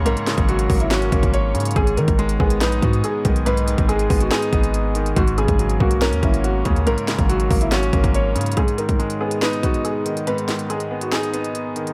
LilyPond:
<<
  \new Staff \with { instrumentName = "Ambient pad" } { \time 4/4 \key gis \minor \tempo 4 = 141 <ais' cis'' fis'' cis'''>1 | <b dis'' gis'' dis'''>1~ | <b dis'' gis'' dis'''>1 | <ais' cis'' fis'' cis'''>1~ |
<ais' cis'' fis'' cis'''>1 | <b dis' gis' dis''>1~ | <b dis' gis' dis''>1 | }
  \new Staff \with { instrumentName = "Felt piano" } { \time 4/4 \key gis \minor ais'4 fis'8. e'16 fis'4 cis''4 | gis'8 ais'4 gis'8 b'8 fis'8 gis'8 r8 | b'4 gis'8. fis'16 gis'2 | fis'8 gis'4 fis'8 ais'8 e'8 fis'8 r8 |
ais'4 fis'8. e'16 fis'4 cis''4 | gis'8 ais'4 gis'8 b'8 fis'8 gis'8 r8 | b'4 gis'8. fis'16 gis'2 | }
  \new Staff \with { instrumentName = "Grand piano" } { \clef bass \time 4/4 \key gis \minor <gis, cis ais cis'>8 cis8 fis8 ais8 cis'8 ais4 cis8 | gis,8 dis8 gis8 b8 dis'8 b4 dis8 | gis,8 dis8 gis8 b8 dis'8 b4 dis8 | gis,8 cis8 fis8 ais8 cis'8 ais4 cis8 |
gis,8 cis8 fis8 ais8 cis'8 ais4 cis8 | gis,8 dis8 gis8 b8 dis'8 b4 dis8 | gis,8 dis8 gis8 b8 dis'8 b4 dis8 | }
  \new Staff \with { instrumentName = "808-style bass" } { \clef bass \time 4/4 \key gis \minor b,,16 r8 gis,,8. gis,,4 gis,,4 gis,8 | gis,,8 dis16 gis,,8. gis,,8 ais,,8 gis,8 r8 b,,8~ | b,,8. gis,,8. gis,,8 r8 gis,,4. | gis,,8. gis,,8. b,,8. dis,16 gis,,4 dis,8 |
b,,16 r8 gis,,8. gis,,4 gis,,4 gis,8 | r1 | r1 | }
  \new DrumStaff \with { instrumentName = "Drums" } \drummode { \time 4/4 hh16 hh16 <hc hh sn>16 <hh bd>16 hh16 hh16 <hho bd>16 hh16 <hc hh sn>16 hh16 <hh bd>16 <hh bd>16 hh8 hh32 hh32 hh32 hh32 | <hh bd>16 hh16 hh16 <hh bd>16 hh16 hh16 bd16 hh16 <hc hh sn>16 hh16 <hh bd>16 hh16 hh8 <hh bd>16 hh16 | hh16 hh16 hh16 <hh bd>16 hh16 hh16 <hho bd>16 hh16 <hc hh sn>16 hh16 <hh bd>16 hh16 hh8 hh16 hh16 | <hh bd>16 hh16 hh16 <hh bd>16 hh16 hh16 bd16 hh16 <hc hh sn>16 hh16 <hh bd>16 hh16 hh8 <hh bd>16 hh16 |
hh16 hh16 <hc hh sn>16 <hh bd>16 hh16 hh16 <hho bd>16 hh16 <hc hh sn>16 hh16 <hh bd>16 <hh bd>16 hh8 hh32 hh32 hh32 hh32 | <hh bd>16 hh16 hh16 <hh bd>16 hh16 hh8 hh16 <hc hh sn>16 hh16 <hh bd>16 hh16 hh8 hh16 hh16 | hh16 hh16 <hc hh sn>16 hh16 hh16 hh8 hh16 <hc hh sn>16 hh16 hh16 hh16 hh8 hh16 hh16 | }
>>